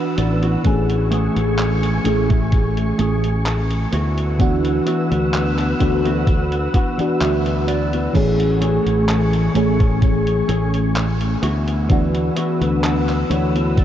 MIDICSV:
0, 0, Header, 1, 8, 480
1, 0, Start_track
1, 0, Key_signature, 3, "major"
1, 0, Tempo, 937500
1, 333, Time_signature, 4, 2, 24, 8
1, 7089, End_track
2, 0, Start_track
2, 0, Title_t, "String machine"
2, 0, Program_c, 0, 50
2, 0, Note_on_c, 0, 71, 82
2, 0, Note_on_c, 0, 78, 69
2, 0, Note_on_c, 0, 88, 85
2, 311, Note_off_c, 0, 78, 0
2, 312, Note_off_c, 0, 71, 0
2, 312, Note_off_c, 0, 88, 0
2, 332, Note_on_c, 0, 57, 77
2, 332, Note_on_c, 0, 80, 72
2, 332, Note_on_c, 0, 85, 88
2, 1996, Note_off_c, 0, 57, 0
2, 1996, Note_off_c, 0, 80, 0
2, 1996, Note_off_c, 0, 85, 0
2, 2012, Note_on_c, 0, 78, 74
2, 2012, Note_on_c, 0, 88, 89
2, 2013, Note_on_c, 0, 71, 79
2, 4152, Note_off_c, 0, 71, 0
2, 4152, Note_off_c, 0, 78, 0
2, 4152, Note_off_c, 0, 88, 0
2, 4170, Note_on_c, 0, 57, 79
2, 4170, Note_on_c, 0, 85, 84
2, 4171, Note_on_c, 0, 80, 72
2, 5834, Note_off_c, 0, 57, 0
2, 5835, Note_off_c, 0, 80, 0
2, 5835, Note_off_c, 0, 85, 0
2, 5851, Note_on_c, 0, 71, 77
2, 5851, Note_on_c, 0, 78, 74
2, 5852, Note_on_c, 0, 88, 89
2, 7089, Note_off_c, 0, 71, 0
2, 7089, Note_off_c, 0, 78, 0
2, 7089, Note_off_c, 0, 88, 0
2, 7089, End_track
3, 0, Start_track
3, 0, Title_t, "Clean electric guitar"
3, 0, Program_c, 1, 27
3, 0, Note_on_c, 1, 78, 72
3, 76, Note_off_c, 1, 78, 0
3, 92, Note_on_c, 1, 74, 68
3, 215, Note_on_c, 1, 59, 75
3, 219, Note_on_c, 1, 64, 68
3, 224, Note_on_c, 1, 66, 80
3, 316, Note_off_c, 1, 74, 0
3, 330, Note_off_c, 1, 59, 0
3, 332, Note_off_c, 1, 64, 0
3, 334, Note_off_c, 1, 66, 0
3, 568, Note_on_c, 1, 57, 86
3, 572, Note_on_c, 1, 61, 78
3, 576, Note_on_c, 1, 68, 91
3, 698, Note_off_c, 1, 57, 0
3, 700, Note_off_c, 1, 61, 0
3, 702, Note_off_c, 1, 68, 0
3, 1174, Note_on_c, 1, 57, 79
3, 1179, Note_on_c, 1, 61, 71
3, 1183, Note_on_c, 1, 64, 85
3, 1290, Note_off_c, 1, 57, 0
3, 1292, Note_off_c, 1, 61, 0
3, 1294, Note_off_c, 1, 64, 0
3, 1527, Note_on_c, 1, 57, 86
3, 1531, Note_on_c, 1, 61, 79
3, 1535, Note_on_c, 1, 68, 91
3, 1657, Note_off_c, 1, 57, 0
3, 1659, Note_off_c, 1, 61, 0
3, 1661, Note_off_c, 1, 68, 0
3, 2008, Note_on_c, 1, 59, 83
3, 2012, Note_on_c, 1, 64, 78
3, 2016, Note_on_c, 1, 66, 99
3, 2400, Note_off_c, 1, 59, 0
3, 2402, Note_off_c, 1, 64, 0
3, 2404, Note_off_c, 1, 66, 0
3, 2488, Note_on_c, 1, 59, 85
3, 2492, Note_on_c, 1, 64, 77
3, 2496, Note_on_c, 1, 66, 90
3, 2618, Note_off_c, 1, 59, 0
3, 2620, Note_off_c, 1, 64, 0
3, 2622, Note_off_c, 1, 66, 0
3, 3095, Note_on_c, 1, 59, 76
3, 3099, Note_on_c, 1, 64, 73
3, 3104, Note_on_c, 1, 66, 87
3, 3210, Note_off_c, 1, 59, 0
3, 3212, Note_off_c, 1, 64, 0
3, 3214, Note_off_c, 1, 66, 0
3, 3449, Note_on_c, 1, 59, 85
3, 3452, Note_on_c, 1, 64, 73
3, 3454, Note_on_c, 1, 78, 70
3, 3457, Note_on_c, 1, 66, 89
3, 3578, Note_off_c, 1, 59, 0
3, 3580, Note_off_c, 1, 64, 0
3, 3582, Note_off_c, 1, 66, 0
3, 3676, Note_off_c, 1, 78, 0
3, 3692, Note_on_c, 1, 76, 71
3, 3916, Note_off_c, 1, 76, 0
3, 3931, Note_on_c, 1, 74, 69
3, 4054, Note_on_c, 1, 59, 72
3, 4058, Note_on_c, 1, 64, 67
3, 4062, Note_on_c, 1, 66, 84
3, 4155, Note_off_c, 1, 74, 0
3, 4170, Note_off_c, 1, 59, 0
3, 4172, Note_off_c, 1, 64, 0
3, 4174, Note_off_c, 1, 66, 0
3, 4407, Note_on_c, 1, 57, 82
3, 4411, Note_on_c, 1, 61, 79
3, 4415, Note_on_c, 1, 68, 95
3, 4537, Note_off_c, 1, 57, 0
3, 4539, Note_off_c, 1, 61, 0
3, 4541, Note_off_c, 1, 68, 0
3, 5015, Note_on_c, 1, 57, 79
3, 5019, Note_on_c, 1, 61, 71
3, 5023, Note_on_c, 1, 68, 89
3, 5130, Note_off_c, 1, 57, 0
3, 5132, Note_off_c, 1, 61, 0
3, 5134, Note_off_c, 1, 68, 0
3, 5367, Note_on_c, 1, 57, 83
3, 5371, Note_on_c, 1, 61, 75
3, 5375, Note_on_c, 1, 68, 92
3, 5497, Note_off_c, 1, 57, 0
3, 5499, Note_off_c, 1, 61, 0
3, 5501, Note_off_c, 1, 68, 0
3, 5847, Note_on_c, 1, 59, 88
3, 5851, Note_on_c, 1, 64, 80
3, 5855, Note_on_c, 1, 66, 94
3, 6240, Note_off_c, 1, 59, 0
3, 6242, Note_off_c, 1, 64, 0
3, 6244, Note_off_c, 1, 66, 0
3, 6328, Note_on_c, 1, 59, 86
3, 6332, Note_on_c, 1, 64, 77
3, 6336, Note_on_c, 1, 66, 95
3, 6458, Note_off_c, 1, 59, 0
3, 6459, Note_off_c, 1, 64, 0
3, 6462, Note_off_c, 1, 66, 0
3, 6811, Note_on_c, 1, 73, 73
3, 6936, Note_on_c, 1, 59, 79
3, 6940, Note_on_c, 1, 64, 72
3, 6943, Note_on_c, 1, 66, 84
3, 7035, Note_off_c, 1, 73, 0
3, 7050, Note_off_c, 1, 59, 0
3, 7052, Note_on_c, 1, 74, 81
3, 7053, Note_off_c, 1, 64, 0
3, 7054, Note_off_c, 1, 66, 0
3, 7089, Note_off_c, 1, 74, 0
3, 7089, End_track
4, 0, Start_track
4, 0, Title_t, "FM electric piano"
4, 0, Program_c, 2, 5
4, 0, Control_c, 2, 64, 127
4, 0, Note_on_c, 2, 52, 91
4, 0, Note_on_c, 2, 59, 82
4, 0, Note_on_c, 2, 62, 83
4, 0, Note_on_c, 2, 66, 92
4, 302, Note_off_c, 2, 52, 0
4, 304, Note_off_c, 2, 59, 0
4, 307, Note_off_c, 2, 62, 0
4, 310, Note_off_c, 2, 66, 0
4, 324, Note_on_c, 2, 52, 84
4, 330, Note_on_c, 2, 57, 73
4, 335, Note_on_c, 2, 61, 76
4, 340, Control_c, 2, 64, 0
4, 341, Note_on_c, 2, 68, 92
4, 423, Control_c, 2, 64, 127
4, 1021, Note_off_c, 2, 52, 0
4, 1024, Note_off_c, 2, 57, 0
4, 1027, Note_off_c, 2, 61, 0
4, 1030, Note_off_c, 2, 68, 0
4, 1044, Note_on_c, 2, 52, 76
4, 1049, Note_on_c, 2, 57, 68
4, 1054, Note_on_c, 2, 61, 69
4, 1059, Note_on_c, 2, 68, 84
4, 1995, Note_off_c, 2, 52, 0
4, 1997, Note_off_c, 2, 57, 0
4, 2000, Note_off_c, 2, 61, 0
4, 2003, Note_off_c, 2, 68, 0
4, 2019, Control_c, 2, 64, 0
4, 2119, Control_c, 2, 64, 127
4, 2244, Note_on_c, 2, 52, 87
4, 2250, Note_on_c, 2, 59, 82
4, 2255, Note_on_c, 2, 62, 84
4, 2260, Note_on_c, 2, 66, 101
4, 2941, Note_off_c, 2, 52, 0
4, 2944, Note_off_c, 2, 59, 0
4, 2947, Note_off_c, 2, 62, 0
4, 2949, Note_off_c, 2, 66, 0
4, 2968, Note_on_c, 2, 52, 79
4, 2972, Note_on_c, 2, 59, 69
4, 2973, Note_on_c, 2, 62, 67
4, 2976, Note_on_c, 2, 66, 84
4, 3424, Note_off_c, 2, 52, 0
4, 3425, Note_off_c, 2, 59, 0
4, 3426, Note_off_c, 2, 62, 0
4, 3427, Note_off_c, 2, 66, 0
4, 3572, Note_on_c, 2, 52, 87
4, 3577, Note_on_c, 2, 59, 81
4, 3582, Note_on_c, 2, 62, 79
4, 3588, Note_on_c, 2, 66, 99
4, 4141, Note_off_c, 2, 52, 0
4, 4144, Note_off_c, 2, 59, 0
4, 4146, Note_off_c, 2, 62, 0
4, 4150, Note_off_c, 2, 66, 0
4, 4162, Note_on_c, 2, 52, 83
4, 4169, Note_on_c, 2, 57, 72
4, 4174, Note_on_c, 2, 61, 74
4, 4179, Note_on_c, 2, 68, 88
4, 4180, Control_c, 2, 64, 0
4, 4274, Control_c, 2, 64, 127
4, 4861, Note_off_c, 2, 52, 0
4, 4864, Note_off_c, 2, 57, 0
4, 4866, Note_off_c, 2, 61, 0
4, 4869, Note_off_c, 2, 68, 0
4, 4883, Note_on_c, 2, 52, 72
4, 4888, Note_on_c, 2, 57, 72
4, 4893, Note_on_c, 2, 61, 67
4, 4898, Note_on_c, 2, 68, 84
4, 5834, Note_off_c, 2, 52, 0
4, 5837, Note_off_c, 2, 57, 0
4, 5839, Note_off_c, 2, 61, 0
4, 5842, Note_off_c, 2, 68, 0
4, 5859, Control_c, 2, 64, 0
4, 5943, Control_c, 2, 64, 127
4, 6085, Note_on_c, 2, 52, 93
4, 6090, Note_on_c, 2, 59, 87
4, 6096, Note_on_c, 2, 62, 85
4, 6100, Note_on_c, 2, 66, 103
4, 6782, Note_off_c, 2, 52, 0
4, 6784, Note_off_c, 2, 59, 0
4, 6787, Note_off_c, 2, 62, 0
4, 6789, Note_off_c, 2, 66, 0
4, 6807, Note_on_c, 2, 52, 74
4, 6810, Note_on_c, 2, 59, 71
4, 6812, Note_on_c, 2, 62, 67
4, 6814, Note_on_c, 2, 66, 81
4, 7089, Note_off_c, 2, 52, 0
4, 7089, Note_off_c, 2, 59, 0
4, 7089, Note_off_c, 2, 62, 0
4, 7089, Note_off_c, 2, 66, 0
4, 7089, End_track
5, 0, Start_track
5, 0, Title_t, "Fretless electric bass"
5, 0, Program_c, 3, 35
5, 92, Note_on_c, 3, 33, 91
5, 283, Note_off_c, 3, 33, 0
5, 332, Note_on_c, 3, 33, 96
5, 655, Note_off_c, 3, 33, 0
5, 698, Note_on_c, 3, 33, 90
5, 1012, Note_off_c, 3, 33, 0
5, 1051, Note_on_c, 3, 33, 85
5, 1492, Note_off_c, 3, 33, 0
5, 1531, Note_on_c, 3, 33, 84
5, 1972, Note_off_c, 3, 33, 0
5, 2011, Note_on_c, 3, 38, 87
5, 2452, Note_off_c, 3, 38, 0
5, 2619, Note_on_c, 3, 38, 95
5, 2933, Note_off_c, 3, 38, 0
5, 2972, Note_on_c, 3, 38, 86
5, 3413, Note_off_c, 3, 38, 0
5, 3691, Note_on_c, 3, 38, 74
5, 4132, Note_off_c, 3, 38, 0
5, 4171, Note_on_c, 3, 33, 95
5, 4494, Note_off_c, 3, 33, 0
5, 4537, Note_on_c, 3, 33, 90
5, 4852, Note_off_c, 3, 33, 0
5, 4890, Note_on_c, 3, 33, 81
5, 5332, Note_off_c, 3, 33, 0
5, 5370, Note_on_c, 3, 33, 88
5, 5812, Note_off_c, 3, 33, 0
5, 5850, Note_on_c, 3, 38, 86
5, 6292, Note_off_c, 3, 38, 0
5, 6457, Note_on_c, 3, 38, 93
5, 6772, Note_off_c, 3, 38, 0
5, 6810, Note_on_c, 3, 38, 87
5, 7089, Note_off_c, 3, 38, 0
5, 7089, End_track
6, 0, Start_track
6, 0, Title_t, "Muted clean electric guitar strokes"
6, 89, Note_on_c, 9, 29, 82
6, 140, Note_off_c, 9, 29, 0
6, 1047, Note_on_c, 9, 29, 83
6, 1098, Note_off_c, 9, 29, 0
6, 2968, Note_on_c, 9, 29, 83
6, 3019, Note_off_c, 9, 29, 0
6, 3926, Note_on_c, 9, 29, 77
6, 3977, Note_off_c, 9, 29, 0
6, 4886, Note_on_c, 9, 29, 84
6, 4938, Note_off_c, 9, 29, 0
6, 6807, Note_on_c, 9, 29, 80
6, 6858, Note_off_c, 9, 29, 0
6, 7089, End_track
7, 0, Start_track
7, 0, Title_t, "Muted fretless electric bass strokes"
7, 3579, Note_on_c, 9, 29, 42
7, 3631, Note_off_c, 9, 29, 0
7, 7089, End_track
8, 0, Start_track
8, 0, Title_t, "Drums"
8, 91, Note_on_c, 9, 42, 83
8, 143, Note_off_c, 9, 42, 0
8, 219, Note_on_c, 9, 42, 37
8, 270, Note_off_c, 9, 42, 0
8, 331, Note_on_c, 9, 42, 60
8, 332, Note_on_c, 9, 36, 109
8, 382, Note_off_c, 9, 42, 0
8, 383, Note_off_c, 9, 36, 0
8, 459, Note_on_c, 9, 42, 37
8, 510, Note_off_c, 9, 42, 0
8, 572, Note_on_c, 9, 42, 88
8, 623, Note_off_c, 9, 42, 0
8, 699, Note_on_c, 9, 42, 37
8, 750, Note_off_c, 9, 42, 0
8, 810, Note_on_c, 9, 39, 105
8, 810, Note_on_c, 9, 42, 61
8, 862, Note_off_c, 9, 39, 0
8, 862, Note_off_c, 9, 42, 0
8, 938, Note_on_c, 9, 42, 38
8, 989, Note_off_c, 9, 42, 0
8, 1050, Note_on_c, 9, 42, 89
8, 1102, Note_off_c, 9, 42, 0
8, 1178, Note_on_c, 9, 42, 35
8, 1179, Note_on_c, 9, 36, 95
8, 1229, Note_off_c, 9, 42, 0
8, 1231, Note_off_c, 9, 36, 0
8, 1291, Note_on_c, 9, 42, 62
8, 1292, Note_on_c, 9, 36, 107
8, 1342, Note_off_c, 9, 42, 0
8, 1343, Note_off_c, 9, 36, 0
8, 1419, Note_on_c, 9, 42, 37
8, 1470, Note_off_c, 9, 42, 0
8, 1530, Note_on_c, 9, 42, 84
8, 1582, Note_off_c, 9, 42, 0
8, 1658, Note_on_c, 9, 42, 37
8, 1709, Note_off_c, 9, 42, 0
8, 1771, Note_on_c, 9, 39, 105
8, 1771, Note_on_c, 9, 42, 62
8, 1822, Note_off_c, 9, 39, 0
8, 1822, Note_off_c, 9, 42, 0
8, 1898, Note_on_c, 9, 42, 37
8, 1949, Note_off_c, 9, 42, 0
8, 2010, Note_on_c, 9, 42, 85
8, 2062, Note_off_c, 9, 42, 0
8, 2138, Note_on_c, 9, 42, 37
8, 2190, Note_off_c, 9, 42, 0
8, 2251, Note_on_c, 9, 42, 64
8, 2252, Note_on_c, 9, 36, 107
8, 2303, Note_off_c, 9, 36, 0
8, 2303, Note_off_c, 9, 42, 0
8, 2379, Note_on_c, 9, 42, 38
8, 2431, Note_off_c, 9, 42, 0
8, 2492, Note_on_c, 9, 42, 84
8, 2543, Note_off_c, 9, 42, 0
8, 2620, Note_on_c, 9, 42, 37
8, 2671, Note_off_c, 9, 42, 0
8, 2732, Note_on_c, 9, 39, 110
8, 2732, Note_on_c, 9, 42, 61
8, 2784, Note_off_c, 9, 39, 0
8, 2784, Note_off_c, 9, 42, 0
8, 2859, Note_on_c, 9, 39, 34
8, 2859, Note_on_c, 9, 42, 37
8, 2910, Note_off_c, 9, 39, 0
8, 2910, Note_off_c, 9, 42, 0
8, 2972, Note_on_c, 9, 36, 55
8, 2972, Note_on_c, 9, 42, 91
8, 3023, Note_off_c, 9, 36, 0
8, 3023, Note_off_c, 9, 42, 0
8, 3101, Note_on_c, 9, 42, 38
8, 3152, Note_off_c, 9, 42, 0
8, 3212, Note_on_c, 9, 36, 108
8, 3212, Note_on_c, 9, 42, 63
8, 3263, Note_off_c, 9, 36, 0
8, 3263, Note_off_c, 9, 42, 0
8, 3339, Note_on_c, 9, 42, 37
8, 3390, Note_off_c, 9, 42, 0
8, 3452, Note_on_c, 9, 36, 100
8, 3452, Note_on_c, 9, 42, 90
8, 3503, Note_off_c, 9, 36, 0
8, 3503, Note_off_c, 9, 42, 0
8, 3579, Note_on_c, 9, 42, 41
8, 3631, Note_off_c, 9, 42, 0
8, 3693, Note_on_c, 9, 39, 105
8, 3693, Note_on_c, 9, 42, 64
8, 3744, Note_off_c, 9, 39, 0
8, 3744, Note_off_c, 9, 42, 0
8, 3820, Note_on_c, 9, 42, 38
8, 3871, Note_off_c, 9, 42, 0
8, 3933, Note_on_c, 9, 42, 90
8, 3984, Note_off_c, 9, 42, 0
8, 4061, Note_on_c, 9, 42, 37
8, 4112, Note_off_c, 9, 42, 0
8, 4171, Note_on_c, 9, 36, 111
8, 4174, Note_on_c, 9, 42, 67
8, 4174, Note_on_c, 9, 49, 75
8, 4222, Note_off_c, 9, 36, 0
8, 4225, Note_off_c, 9, 42, 0
8, 4225, Note_off_c, 9, 49, 0
8, 4300, Note_on_c, 9, 42, 42
8, 4351, Note_off_c, 9, 42, 0
8, 4412, Note_on_c, 9, 42, 90
8, 4463, Note_off_c, 9, 42, 0
8, 4539, Note_on_c, 9, 42, 39
8, 4590, Note_off_c, 9, 42, 0
8, 4651, Note_on_c, 9, 39, 114
8, 4651, Note_on_c, 9, 42, 63
8, 4703, Note_off_c, 9, 39, 0
8, 4703, Note_off_c, 9, 42, 0
8, 4778, Note_on_c, 9, 42, 39
8, 4829, Note_off_c, 9, 42, 0
8, 4891, Note_on_c, 9, 42, 92
8, 4942, Note_off_c, 9, 42, 0
8, 5018, Note_on_c, 9, 36, 107
8, 5019, Note_on_c, 9, 42, 39
8, 5070, Note_off_c, 9, 36, 0
8, 5070, Note_off_c, 9, 42, 0
8, 5131, Note_on_c, 9, 36, 115
8, 5131, Note_on_c, 9, 42, 65
8, 5182, Note_off_c, 9, 36, 0
8, 5182, Note_off_c, 9, 42, 0
8, 5258, Note_on_c, 9, 42, 40
8, 5309, Note_off_c, 9, 42, 0
8, 5370, Note_on_c, 9, 42, 90
8, 5422, Note_off_c, 9, 42, 0
8, 5498, Note_on_c, 9, 42, 41
8, 5549, Note_off_c, 9, 42, 0
8, 5611, Note_on_c, 9, 39, 116
8, 5611, Note_on_c, 9, 42, 67
8, 5662, Note_off_c, 9, 39, 0
8, 5662, Note_off_c, 9, 42, 0
8, 5738, Note_on_c, 9, 42, 41
8, 5789, Note_off_c, 9, 42, 0
8, 5851, Note_on_c, 9, 42, 93
8, 5902, Note_off_c, 9, 42, 0
8, 5978, Note_on_c, 9, 42, 39
8, 6029, Note_off_c, 9, 42, 0
8, 6091, Note_on_c, 9, 36, 124
8, 6091, Note_on_c, 9, 42, 65
8, 6142, Note_off_c, 9, 36, 0
8, 6142, Note_off_c, 9, 42, 0
8, 6219, Note_on_c, 9, 42, 40
8, 6270, Note_off_c, 9, 42, 0
8, 6331, Note_on_c, 9, 42, 95
8, 6382, Note_off_c, 9, 42, 0
8, 6459, Note_on_c, 9, 42, 40
8, 6511, Note_off_c, 9, 42, 0
8, 6572, Note_on_c, 9, 39, 119
8, 6572, Note_on_c, 9, 42, 64
8, 6623, Note_off_c, 9, 39, 0
8, 6623, Note_off_c, 9, 42, 0
8, 6700, Note_on_c, 9, 39, 37
8, 6700, Note_on_c, 9, 42, 38
8, 6751, Note_off_c, 9, 39, 0
8, 6751, Note_off_c, 9, 42, 0
8, 6813, Note_on_c, 9, 42, 91
8, 6864, Note_off_c, 9, 42, 0
8, 6940, Note_on_c, 9, 42, 37
8, 6991, Note_off_c, 9, 42, 0
8, 7052, Note_on_c, 9, 36, 119
8, 7053, Note_on_c, 9, 42, 70
8, 7089, Note_off_c, 9, 36, 0
8, 7089, Note_off_c, 9, 42, 0
8, 7089, End_track
0, 0, End_of_file